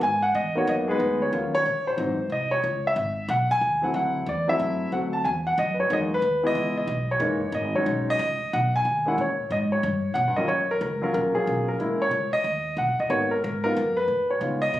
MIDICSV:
0, 0, Header, 1, 4, 480
1, 0, Start_track
1, 0, Tempo, 326975
1, 28, Time_signature, 4, 2, 24, 8
1, 21722, End_track
2, 0, Start_track
2, 0, Title_t, "Grand piano"
2, 0, Program_c, 0, 0
2, 45, Note_on_c, 0, 80, 97
2, 325, Note_off_c, 0, 80, 0
2, 330, Note_on_c, 0, 78, 96
2, 510, Note_off_c, 0, 78, 0
2, 517, Note_on_c, 0, 75, 89
2, 801, Note_off_c, 0, 75, 0
2, 810, Note_on_c, 0, 59, 62
2, 814, Note_on_c, 0, 58, 69
2, 820, Note_on_c, 0, 63, 58
2, 830, Note_on_c, 0, 66, 79
2, 847, Note_on_c, 0, 73, 80
2, 1008, Note_off_c, 0, 73, 0
2, 1013, Note_on_c, 0, 75, 89
2, 1087, Note_off_c, 0, 75, 0
2, 1263, Note_off_c, 0, 59, 0
2, 1265, Note_off_c, 0, 58, 0
2, 1268, Note_off_c, 0, 63, 0
2, 1273, Note_off_c, 0, 66, 0
2, 1286, Note_on_c, 0, 56, 79
2, 1294, Note_on_c, 0, 59, 71
2, 1299, Note_on_c, 0, 63, 70
2, 1307, Note_on_c, 0, 68, 81
2, 1334, Note_on_c, 0, 71, 93
2, 1791, Note_on_c, 0, 73, 83
2, 1810, Note_off_c, 0, 71, 0
2, 1909, Note_off_c, 0, 56, 0
2, 1913, Note_off_c, 0, 59, 0
2, 1915, Note_off_c, 0, 63, 0
2, 1919, Note_off_c, 0, 68, 0
2, 1948, Note_on_c, 0, 54, 50
2, 1950, Note_on_c, 0, 58, 55
2, 1956, Note_on_c, 0, 61, 50
2, 1960, Note_on_c, 0, 65, 61
2, 2227, Note_off_c, 0, 54, 0
2, 2228, Note_off_c, 0, 58, 0
2, 2231, Note_off_c, 0, 61, 0
2, 2233, Note_off_c, 0, 65, 0
2, 2248, Note_off_c, 0, 73, 0
2, 2270, Note_on_c, 0, 73, 115
2, 2750, Note_on_c, 0, 72, 88
2, 2759, Note_off_c, 0, 73, 0
2, 2894, Note_on_c, 0, 52, 56
2, 2895, Note_on_c, 0, 54, 55
2, 2907, Note_on_c, 0, 63, 66
2, 2910, Note_on_c, 0, 60, 56
2, 3180, Note_off_c, 0, 52, 0
2, 3180, Note_off_c, 0, 54, 0
2, 3186, Note_off_c, 0, 63, 0
2, 3188, Note_off_c, 0, 60, 0
2, 3410, Note_on_c, 0, 75, 86
2, 3414, Note_off_c, 0, 72, 0
2, 3690, Note_on_c, 0, 73, 96
2, 3718, Note_off_c, 0, 75, 0
2, 4140, Note_off_c, 0, 73, 0
2, 4216, Note_on_c, 0, 76, 91
2, 4844, Note_on_c, 0, 78, 92
2, 4867, Note_off_c, 0, 76, 0
2, 5153, Note_on_c, 0, 80, 112
2, 5155, Note_off_c, 0, 78, 0
2, 5602, Note_on_c, 0, 54, 60
2, 5615, Note_on_c, 0, 57, 54
2, 5622, Note_on_c, 0, 60, 56
2, 5626, Note_on_c, 0, 64, 62
2, 5634, Note_on_c, 0, 78, 81
2, 5640, Note_off_c, 0, 80, 0
2, 5707, Note_off_c, 0, 78, 0
2, 5802, Note_on_c, 0, 78, 90
2, 6227, Note_off_c, 0, 54, 0
2, 6233, Note_off_c, 0, 57, 0
2, 6237, Note_off_c, 0, 60, 0
2, 6239, Note_off_c, 0, 64, 0
2, 6290, Note_off_c, 0, 78, 0
2, 6295, Note_on_c, 0, 74, 84
2, 6571, Note_on_c, 0, 54, 70
2, 6575, Note_on_c, 0, 57, 61
2, 6579, Note_on_c, 0, 60, 66
2, 6591, Note_on_c, 0, 64, 73
2, 6596, Note_on_c, 0, 76, 99
2, 6601, Note_off_c, 0, 74, 0
2, 7192, Note_off_c, 0, 54, 0
2, 7193, Note_off_c, 0, 76, 0
2, 7194, Note_off_c, 0, 57, 0
2, 7196, Note_off_c, 0, 60, 0
2, 7201, Note_off_c, 0, 64, 0
2, 7216, Note_on_c, 0, 54, 55
2, 7228, Note_on_c, 0, 57, 47
2, 7229, Note_on_c, 0, 60, 51
2, 7230, Note_on_c, 0, 78, 87
2, 7236, Note_on_c, 0, 66, 63
2, 7304, Note_off_c, 0, 78, 0
2, 7531, Note_on_c, 0, 81, 81
2, 7694, Note_off_c, 0, 81, 0
2, 7700, Note_on_c, 0, 80, 85
2, 7703, Note_off_c, 0, 54, 0
2, 7709, Note_off_c, 0, 57, 0
2, 7710, Note_off_c, 0, 60, 0
2, 7713, Note_off_c, 0, 66, 0
2, 7773, Note_off_c, 0, 80, 0
2, 8025, Note_on_c, 0, 78, 93
2, 8181, Note_off_c, 0, 78, 0
2, 8202, Note_on_c, 0, 75, 89
2, 8430, Note_on_c, 0, 71, 53
2, 8435, Note_off_c, 0, 75, 0
2, 8504, Note_off_c, 0, 71, 0
2, 8511, Note_on_c, 0, 73, 84
2, 8667, Note_on_c, 0, 56, 55
2, 8668, Note_on_c, 0, 54, 51
2, 8668, Note_on_c, 0, 58, 51
2, 8678, Note_on_c, 0, 63, 63
2, 8681, Note_off_c, 0, 73, 0
2, 8707, Note_on_c, 0, 75, 90
2, 8781, Note_off_c, 0, 75, 0
2, 8948, Note_off_c, 0, 54, 0
2, 8948, Note_off_c, 0, 56, 0
2, 8948, Note_off_c, 0, 58, 0
2, 8953, Note_off_c, 0, 63, 0
2, 9017, Note_on_c, 0, 71, 99
2, 9445, Note_on_c, 0, 56, 63
2, 9446, Note_on_c, 0, 52, 62
2, 9447, Note_on_c, 0, 59, 63
2, 9457, Note_on_c, 0, 64, 69
2, 9493, Note_off_c, 0, 71, 0
2, 9493, Note_on_c, 0, 75, 104
2, 9923, Note_off_c, 0, 75, 0
2, 9945, Note_on_c, 0, 75, 86
2, 10070, Note_off_c, 0, 52, 0
2, 10070, Note_off_c, 0, 56, 0
2, 10071, Note_off_c, 0, 59, 0
2, 10075, Note_off_c, 0, 64, 0
2, 10437, Note_off_c, 0, 75, 0
2, 10442, Note_on_c, 0, 73, 88
2, 10562, Note_on_c, 0, 52, 62
2, 10567, Note_on_c, 0, 56, 61
2, 10574, Note_on_c, 0, 58, 62
2, 10582, Note_on_c, 0, 63, 69
2, 10856, Note_off_c, 0, 52, 0
2, 10858, Note_off_c, 0, 56, 0
2, 10862, Note_off_c, 0, 58, 0
2, 10866, Note_off_c, 0, 63, 0
2, 11038, Note_off_c, 0, 73, 0
2, 11077, Note_on_c, 0, 75, 78
2, 11363, Note_off_c, 0, 75, 0
2, 11378, Note_on_c, 0, 54, 67
2, 11383, Note_on_c, 0, 73, 85
2, 11387, Note_on_c, 0, 61, 65
2, 11389, Note_on_c, 0, 56, 59
2, 11396, Note_on_c, 0, 63, 71
2, 11830, Note_off_c, 0, 73, 0
2, 11893, Note_on_c, 0, 75, 109
2, 11997, Note_off_c, 0, 54, 0
2, 12001, Note_off_c, 0, 61, 0
2, 12003, Note_off_c, 0, 56, 0
2, 12006, Note_off_c, 0, 63, 0
2, 12527, Note_on_c, 0, 78, 92
2, 12548, Note_off_c, 0, 75, 0
2, 12809, Note_off_c, 0, 78, 0
2, 12854, Note_on_c, 0, 80, 99
2, 13287, Note_off_c, 0, 80, 0
2, 13293, Note_on_c, 0, 56, 59
2, 13303, Note_on_c, 0, 58, 57
2, 13311, Note_on_c, 0, 61, 60
2, 13323, Note_on_c, 0, 64, 69
2, 13330, Note_on_c, 0, 78, 81
2, 13452, Note_off_c, 0, 56, 0
2, 13457, Note_off_c, 0, 58, 0
2, 13461, Note_off_c, 0, 61, 0
2, 13467, Note_off_c, 0, 64, 0
2, 13476, Note_off_c, 0, 78, 0
2, 13519, Note_on_c, 0, 73, 78
2, 13945, Note_off_c, 0, 73, 0
2, 13975, Note_on_c, 0, 75, 90
2, 14048, Note_off_c, 0, 75, 0
2, 14271, Note_on_c, 0, 73, 80
2, 14873, Note_off_c, 0, 73, 0
2, 14886, Note_on_c, 0, 78, 90
2, 15214, Note_on_c, 0, 75, 88
2, 15220, Note_off_c, 0, 78, 0
2, 15221, Note_on_c, 0, 39, 57
2, 15221, Note_on_c, 0, 58, 59
2, 15227, Note_on_c, 0, 54, 63
2, 15228, Note_on_c, 0, 61, 54
2, 15232, Note_on_c, 0, 65, 66
2, 15376, Note_off_c, 0, 39, 0
2, 15377, Note_off_c, 0, 58, 0
2, 15380, Note_off_c, 0, 54, 0
2, 15380, Note_off_c, 0, 61, 0
2, 15382, Note_off_c, 0, 65, 0
2, 15382, Note_on_c, 0, 73, 87
2, 15396, Note_off_c, 0, 75, 0
2, 15708, Note_off_c, 0, 73, 0
2, 15723, Note_on_c, 0, 70, 88
2, 15863, Note_off_c, 0, 70, 0
2, 15885, Note_on_c, 0, 70, 78
2, 16169, Note_on_c, 0, 54, 65
2, 16179, Note_off_c, 0, 70, 0
2, 16184, Note_on_c, 0, 58, 59
2, 16186, Note_on_c, 0, 65, 70
2, 16187, Note_on_c, 0, 61, 59
2, 16201, Note_on_c, 0, 70, 80
2, 16333, Note_off_c, 0, 70, 0
2, 16355, Note_on_c, 0, 70, 76
2, 16627, Note_off_c, 0, 54, 0
2, 16634, Note_off_c, 0, 58, 0
2, 16635, Note_off_c, 0, 61, 0
2, 16635, Note_off_c, 0, 65, 0
2, 16644, Note_off_c, 0, 70, 0
2, 16658, Note_on_c, 0, 68, 86
2, 16661, Note_on_c, 0, 58, 56
2, 16663, Note_on_c, 0, 54, 60
2, 16668, Note_on_c, 0, 61, 52
2, 16673, Note_on_c, 0, 65, 72
2, 17108, Note_off_c, 0, 68, 0
2, 17152, Note_on_c, 0, 70, 80
2, 17280, Note_off_c, 0, 58, 0
2, 17281, Note_off_c, 0, 54, 0
2, 17284, Note_off_c, 0, 61, 0
2, 17286, Note_off_c, 0, 65, 0
2, 17301, Note_on_c, 0, 56, 58
2, 17313, Note_on_c, 0, 58, 56
2, 17319, Note_on_c, 0, 61, 54
2, 17329, Note_on_c, 0, 64, 65
2, 17588, Note_off_c, 0, 56, 0
2, 17593, Note_off_c, 0, 58, 0
2, 17597, Note_off_c, 0, 61, 0
2, 17601, Note_off_c, 0, 64, 0
2, 17641, Note_on_c, 0, 73, 97
2, 17643, Note_off_c, 0, 70, 0
2, 18080, Note_off_c, 0, 73, 0
2, 18101, Note_on_c, 0, 75, 104
2, 18708, Note_off_c, 0, 75, 0
2, 18762, Note_on_c, 0, 78, 86
2, 19078, Note_off_c, 0, 78, 0
2, 19084, Note_on_c, 0, 75, 80
2, 19222, Note_on_c, 0, 58, 55
2, 19223, Note_on_c, 0, 59, 51
2, 19233, Note_on_c, 0, 73, 92
2, 19234, Note_off_c, 0, 75, 0
2, 19239, Note_on_c, 0, 63, 46
2, 19243, Note_on_c, 0, 66, 60
2, 19508, Note_off_c, 0, 58, 0
2, 19508, Note_off_c, 0, 59, 0
2, 19516, Note_off_c, 0, 63, 0
2, 19518, Note_off_c, 0, 66, 0
2, 19541, Note_on_c, 0, 70, 83
2, 19553, Note_off_c, 0, 73, 0
2, 19704, Note_off_c, 0, 70, 0
2, 19726, Note_on_c, 0, 70, 80
2, 19998, Note_off_c, 0, 70, 0
2, 20019, Note_on_c, 0, 58, 66
2, 20020, Note_on_c, 0, 70, 97
2, 20026, Note_on_c, 0, 59, 63
2, 20029, Note_on_c, 0, 63, 61
2, 20042, Note_on_c, 0, 65, 72
2, 20175, Note_off_c, 0, 58, 0
2, 20178, Note_off_c, 0, 59, 0
2, 20180, Note_off_c, 0, 63, 0
2, 20186, Note_off_c, 0, 65, 0
2, 20468, Note_off_c, 0, 70, 0
2, 20504, Note_on_c, 0, 71, 96
2, 20997, Note_off_c, 0, 71, 0
2, 20999, Note_on_c, 0, 73, 78
2, 21137, Note_on_c, 0, 56, 51
2, 21143, Note_on_c, 0, 59, 43
2, 21154, Note_on_c, 0, 65, 55
2, 21155, Note_on_c, 0, 63, 46
2, 21423, Note_off_c, 0, 56, 0
2, 21426, Note_off_c, 0, 59, 0
2, 21432, Note_off_c, 0, 63, 0
2, 21432, Note_off_c, 0, 65, 0
2, 21437, Note_off_c, 0, 73, 0
2, 21457, Note_on_c, 0, 75, 100
2, 21722, Note_off_c, 0, 75, 0
2, 21722, End_track
3, 0, Start_track
3, 0, Title_t, "Upright bass"
3, 0, Program_c, 1, 32
3, 17, Note_on_c, 1, 44, 83
3, 488, Note_off_c, 1, 44, 0
3, 508, Note_on_c, 1, 40, 86
3, 974, Note_off_c, 1, 40, 0
3, 989, Note_on_c, 1, 42, 89
3, 1454, Note_off_c, 1, 42, 0
3, 1464, Note_on_c, 1, 38, 80
3, 1932, Note_off_c, 1, 38, 0
3, 1946, Note_on_c, 1, 39, 90
3, 2413, Note_off_c, 1, 39, 0
3, 2433, Note_on_c, 1, 34, 81
3, 2894, Note_off_c, 1, 34, 0
3, 2902, Note_on_c, 1, 32, 90
3, 3363, Note_off_c, 1, 32, 0
3, 3372, Note_on_c, 1, 36, 78
3, 3846, Note_off_c, 1, 36, 0
3, 3869, Note_on_c, 1, 37, 81
3, 4335, Note_off_c, 1, 37, 0
3, 4344, Note_on_c, 1, 32, 89
3, 4812, Note_off_c, 1, 32, 0
3, 4822, Note_on_c, 1, 35, 92
3, 5291, Note_off_c, 1, 35, 0
3, 5303, Note_on_c, 1, 39, 82
3, 5772, Note_off_c, 1, 39, 0
3, 5782, Note_on_c, 1, 38, 81
3, 6251, Note_off_c, 1, 38, 0
3, 6259, Note_on_c, 1, 40, 87
3, 6730, Note_off_c, 1, 40, 0
3, 6746, Note_on_c, 1, 42, 86
3, 7213, Note_off_c, 1, 42, 0
3, 7225, Note_on_c, 1, 38, 81
3, 7693, Note_off_c, 1, 38, 0
3, 7710, Note_on_c, 1, 40, 84
3, 8176, Note_off_c, 1, 40, 0
3, 8186, Note_on_c, 1, 42, 87
3, 8654, Note_off_c, 1, 42, 0
3, 8663, Note_on_c, 1, 40, 87
3, 9122, Note_off_c, 1, 40, 0
3, 9131, Note_on_c, 1, 39, 85
3, 9606, Note_off_c, 1, 39, 0
3, 9616, Note_on_c, 1, 37, 88
3, 10083, Note_off_c, 1, 37, 0
3, 10092, Note_on_c, 1, 35, 92
3, 10557, Note_off_c, 1, 35, 0
3, 10566, Note_on_c, 1, 30, 94
3, 11034, Note_off_c, 1, 30, 0
3, 11043, Note_on_c, 1, 32, 88
3, 11523, Note_off_c, 1, 32, 0
3, 11540, Note_on_c, 1, 35, 88
3, 12012, Note_off_c, 1, 35, 0
3, 12024, Note_on_c, 1, 37, 96
3, 12317, Note_off_c, 1, 37, 0
3, 12527, Note_on_c, 1, 35, 91
3, 12982, Note_off_c, 1, 35, 0
3, 12991, Note_on_c, 1, 39, 83
3, 13458, Note_off_c, 1, 39, 0
3, 13475, Note_on_c, 1, 46, 79
3, 13941, Note_off_c, 1, 46, 0
3, 13953, Note_on_c, 1, 44, 85
3, 14420, Note_off_c, 1, 44, 0
3, 14433, Note_on_c, 1, 43, 87
3, 14896, Note_off_c, 1, 43, 0
3, 14905, Note_on_c, 1, 47, 82
3, 15082, Note_off_c, 1, 47, 0
3, 15082, Note_on_c, 1, 43, 53
3, 15215, Note_off_c, 1, 43, 0
3, 15223, Note_on_c, 1, 39, 60
3, 15378, Note_off_c, 1, 39, 0
3, 15392, Note_on_c, 1, 42, 69
3, 15860, Note_off_c, 1, 42, 0
3, 15867, Note_on_c, 1, 37, 81
3, 16337, Note_off_c, 1, 37, 0
3, 16356, Note_on_c, 1, 34, 83
3, 16644, Note_off_c, 1, 34, 0
3, 16840, Note_on_c, 1, 35, 84
3, 17304, Note_off_c, 1, 35, 0
3, 17319, Note_on_c, 1, 34, 72
3, 17770, Note_off_c, 1, 34, 0
3, 17779, Note_on_c, 1, 37, 81
3, 18075, Note_off_c, 1, 37, 0
3, 18263, Note_on_c, 1, 39, 83
3, 18732, Note_off_c, 1, 39, 0
3, 18740, Note_on_c, 1, 35, 78
3, 18917, Note_on_c, 1, 31, 50
3, 18939, Note_off_c, 1, 35, 0
3, 19066, Note_off_c, 1, 31, 0
3, 19075, Note_on_c, 1, 27, 62
3, 19219, Note_off_c, 1, 27, 0
3, 19228, Note_on_c, 1, 32, 77
3, 19697, Note_off_c, 1, 32, 0
3, 19730, Note_on_c, 1, 44, 89
3, 20188, Note_off_c, 1, 44, 0
3, 20208, Note_on_c, 1, 42, 88
3, 20657, Note_off_c, 1, 42, 0
3, 20666, Note_on_c, 1, 46, 78
3, 21134, Note_off_c, 1, 46, 0
3, 21150, Note_on_c, 1, 49, 83
3, 21616, Note_off_c, 1, 49, 0
3, 21634, Note_on_c, 1, 47, 84
3, 21722, Note_off_c, 1, 47, 0
3, 21722, End_track
4, 0, Start_track
4, 0, Title_t, "Muted upright bass strokes"
4, 12340, Note_on_c, 9, 29, 42
4, 12487, Note_off_c, 9, 29, 0
4, 16682, Note_on_c, 9, 29, 35
4, 16829, Note_off_c, 9, 29, 0
4, 18097, Note_on_c, 9, 29, 37
4, 18243, Note_off_c, 9, 29, 0
4, 21722, End_track
0, 0, End_of_file